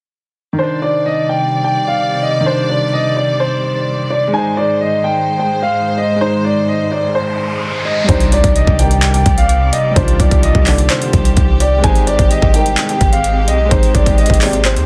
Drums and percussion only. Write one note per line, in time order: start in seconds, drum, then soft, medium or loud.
8.09 kick loud
8.09 closed hi-hat medium
8.20 closed hi-hat medium
8.32 closed hi-hat medium
8.44 kick loud
8.44 closed hi-hat medium
8.56 closed hi-hat medium
8.67 kick loud
8.79 closed hi-hat medium
8.91 closed hi-hat medium
9.03 clap loud
9.03 closed hi-hat medium
9.14 closed hi-hat medium
9.26 kick loud
9.26 closed hi-hat medium
9.38 closed hi-hat medium
9.49 closed hi-hat medium
9.73 closed hi-hat medium
9.96 kick loud
9.96 closed hi-hat medium
10.08 closed hi-hat medium
10.20 kick medium
10.20 closed hi-hat medium
10.31 kick loud
10.31 closed hi-hat medium
10.43 closed hi-hat medium
10.55 kick loud
10.66 clap medium
10.66 open hi-hat medium
10.78 closed hi-hat medium
10.90 clap loud
10.90 closed hi-hat medium
11.02 closed hi-hat medium
11.13 kick loud
11.13 closed hi-hat medium
11.25 closed hi-hat medium
11.37 kick medium
11.37 closed hi-hat medium
11.60 closed hi-hat medium
11.84 kick loud
11.84 closed hi-hat medium
11.95 closed hi-hat medium
12.07 closed hi-hat medium
12.19 kick loud
12.19 closed hi-hat medium
12.31 closed hi-hat medium
12.42 kick loud
12.54 closed hi-hat medium
12.66 closed hi-hat medium
12.78 clap loud
12.78 closed hi-hat medium
12.89 closed hi-hat medium
13.01 kick loud
13.01 closed hi-hat medium
13.13 closed hi-hat medium
13.24 closed hi-hat medium
13.48 closed hi-hat medium
13.71 kick loud
13.71 closed hi-hat medium
13.83 closed hi-hat medium
13.95 kick medium
13.95 closed hi-hat medium
14.06 kick loud
14.06 closed hi-hat medium
14.18 closed hi-hat soft
14.26 kick loud
14.26 closed hi-hat medium
14.34 closed hi-hat medium
14.41 clap loud
14.41 open hi-hat medium
14.53 closed hi-hat medium
14.65 clap loud
14.65 closed hi-hat medium
14.76 closed hi-hat medium